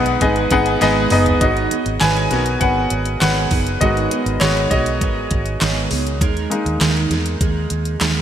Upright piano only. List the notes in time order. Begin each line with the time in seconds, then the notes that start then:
Already playing: G#2 B3 D#4 G#4 B4 D#5 F#5
0.07 F#5
0.22 B3 D#4 G#4 B4 D#5 G#5
0.37 F#5
0.52 B3 D#4 G#4 B4 F#5
0.67 G#5
0.81 B3 D#4 G#4 B4 D#5 G#5
1.12 B3 D#4 G#4 B4 D#5 B5
1.41 F#4 D#5
2.00 B4 G#5
2.31 B3 F#4 A#4
2.61 B4 F#5
3.20 B4 F#5
3.81 G#3 B3 F#4 A#4 D#5
4.40 F#4 C#5
4.71 F#4 D#5
6.50 G#3 A#3 D#4